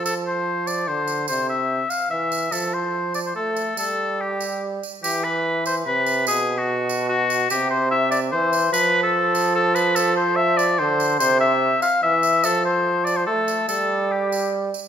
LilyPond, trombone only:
\new Staff \with { instrumentName = "Trombone" } { \clef bass \time 3/4 \key f \lydian \tempo 4 = 146 f2 d4 | c4. r8 e4 | f2 a4 | g2~ g8 r8 |
e2 c4 | b,2. | c2 e4 | f2.~ |
f2 d4 | c4. r8 e4 | f2 a4 | g2~ g8 r8 | }